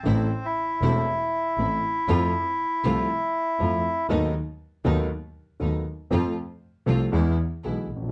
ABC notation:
X:1
M:4/4
L:1/16
Q:1/4=118
K:Am
V:1 name="Bandoneon"
C3 E12- E- | E16 | z16 | z16 |]
V:2 name="String section"
[A,CE]2 z4 [A,CE]2 z4 [A,CE]2 z2 | [A,CF]2 z4 [A,CF]2 z4 [A,CF]2 z2 | [A,B,^D]2 z4 [A,B,D]2 z4 [A,B,D]2 z2 | [A,CF]2 z4 [A,CF]2 [^G,B,E]2 z2 [G,B,E]2 z2 |]
V:3 name="Grand piano" clef=bass
[A,,,A,,E,A,CA]2 z4 [E,,,E,,E,A,CA]2 z4 [A,,,A,,E,A,CA]2 z2 | [F,,F,A,CA]2 z4 [C,,C,F,A,CA]2 z4 [F,,F,A,CA]2 z2 | [^D,,^D,^F,B,^DA]2 z4 [D,,D,F,B,DA]2 z4 [D,,D,F,B,DA]2 z2 | [F,,F,A,CA]2 z4 [C,,C,F,A,CA]2 [E,,E,^G,B,^G]2 z2 [B,,,B,,E,G,B,G]2 z/2 A,,,/2 _B,,,/2 z/2 |]
V:4 name="Double bass" clef=bass
A,,,2 z4 E,,,2 z4 A,,,2 z2 | F,,2 z4 C,,2 z4 F,,2 z2 | ^D,,2 z4 D,,2 z4 D,,2 z2 | F,,2 z4 C,,2 E,,2 z2 B,,,2 _B,,,2 |]